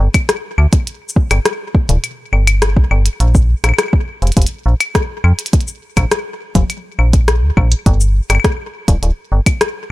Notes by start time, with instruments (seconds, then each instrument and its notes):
0.14 kick, closed hi-hat, claves
0.29 cross-stick, closed hi-hat
0.58 fm bass D2, claves
0.73 kick, closed hi-hat
0.87 closed hi-hat
1.09 shaker
1.16 kick
1.31 fm bass G1, cross-stick, closed hi-hat, claves
1.45 cross-stick, closed hi-hat
1.75 kick
1.89 fm bass D1, closed hi-hat, high tom
2.04 closed hi-hat, claves
2.33 fm bass G1, claves
2.47 closed hi-hat, claves
2.62 cross-stick, closed hi-hat
2.77 fm bass B1, kick
2.91 fm bass G1, claves
3.06 closed hi-hat
3.20 fm bass A#1, closed hi-hat
3.35 kick, shaker
3.64 fm bass A#1, cross-stick, closed hi-hat, claves
3.69 claves
3.74 claves
3.78 cross-stick, closed hi-hat, claves
3.83 claves
3.88 claves
3.93 kick
4.22 fm bass F1, closed hi-hat
4.27 closed hi-hat
4.32 closed hi-hat
4.37 fm bass F1, kick, closed hi-hat
4.42 closed hi-hat
4.46 closed hi-hat
4.66 fm bass A#1
4.80 closed hi-hat, claves
4.95 kick, cross-stick, closed hi-hat
5.24 fm bass F2, claves
5.39 closed hi-hat
5.46 closed hi-hat
5.53 kick, closed hi-hat
5.61 closed hi-hat
5.68 shaker
5.97 fm bass A#1, kick, cross-stick, closed hi-hat, claves
6.11 cross-stick, closed hi-hat
6.55 fm bass F1, kick, closed hi-hat, high tom
6.70 closed hi-hat, claves
6.99 fm bass A#1, claves
7.13 kick, closed hi-hat
7.28 cross-stick, closed hi-hat
7.42 fm bass D2
7.57 fm bass A#1, kick, claves
7.72 closed hi-hat
7.86 fm bass G1, kick, closed hi-hat
8.01 shaker
8.30 fm bass G1, cross-stick, closed hi-hat, claves
8.35 claves
8.40 claves
8.44 kick, cross-stick, closed hi-hat
8.88 fm bass D1, kick, closed hi-hat
9.03 fm bass D1, closed hi-hat
9.32 fm bass G1
9.46 kick, closed hi-hat, claves
9.61 cross-stick, closed hi-hat